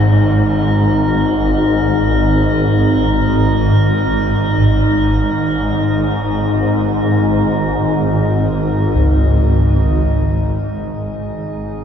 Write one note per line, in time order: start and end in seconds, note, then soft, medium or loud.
0.00 10.58 G#1 medium
0.00 10.57 G#2 medium
0.00 6.55 G#3 medium
0.00 10.61 D#4 medium
8.96 11.84 C#2 medium
10.57 11.84 G#1 medium
10.57 11.84 G#2 medium
10.57 11.84 D#3 medium
10.57 11.84 G#4 medium